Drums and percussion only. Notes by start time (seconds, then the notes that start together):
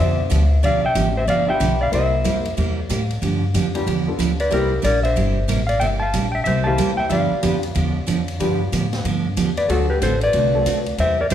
0.31 hi-hat pedal, ride
0.64 ride
0.95 hi-hat pedal, ride
1.28 ride
1.61 hi-hat pedal, ride
1.93 ride
2.25 hi-hat pedal, ride
2.45 ride
2.57 ride
2.90 hi-hat pedal, ride
3.10 ride
3.23 ride
3.55 hi-hat pedal, ride
3.75 ride
3.87 ride
4.20 hi-hat pedal, ride
4.40 ride
4.52 ride
4.84 hi-hat pedal, ride
5.05 ride
5.17 ride
5.49 hi-hat pedal, ride
5.69 ride
5.81 ride
6.13 hi-hat pedal, ride
6.46 ride
6.78 hi-hat pedal, ride
7.10 ride
7.43 hi-hat pedal, ride
7.63 ride
7.75 ride
8.08 hi-hat pedal, ride
8.28 ride
8.40 ride
8.73 hi-hat pedal, ride
8.93 snare, ride
9.05 ride
9.37 hi-hat pedal, ride
9.57 ride
9.69 ride
10.02 hi-hat pedal, ride
10.21 ride
10.33 ride
10.66 hi-hat pedal, ride
10.86 ride
10.98 ride
11.30 hi-hat pedal, ride